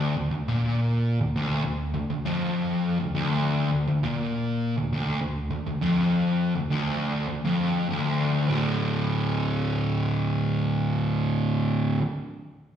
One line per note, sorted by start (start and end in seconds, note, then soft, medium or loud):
0.00 0.14 D2 loud
0.17 0.30 D2 medium
0.31 0.47 D2 medium
0.48 1.20 A#2 loud
1.21 1.35 D2 medium
1.36 1.63 D2 loud
1.65 1.93 D2 medium
1.94 2.09 D2 medium
2.10 2.25 D2 medium
2.25 2.98 F2 loud
3.00 3.13 D2 medium
3.15 3.70 D2 loud
3.72 3.87 D2 medium
3.88 4.03 D2 medium
4.04 4.76 A#2 loud
4.78 4.92 D2 medium
4.93 5.20 D2 loud
5.21 5.50 D2 medium
5.51 5.66 D2 medium
5.67 5.81 D2 medium
5.82 6.54 F2 medium
6.56 6.70 D2 medium
6.71 7.27 D2 loud
7.28 7.44 D2 medium
7.44 7.87 F2 medium
7.89 8.47 D2 loud
8.48 11.98 D2 medium
8.48 12.00 A2 loud
8.52 12.02 D3 loud